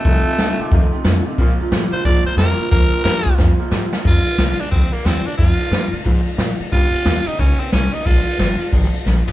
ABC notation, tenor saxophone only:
X:1
M:4/4
L:1/8
Q:"Swing" 1/4=180
K:Bbmix
V:1 name="Tenor saxophone"
=A,4- A, z3 | z3 c d c B2 | B2 B2 z4 | F3 D C B, C D |
F4 z4 | F3 E _D C D E | F4 z4 |]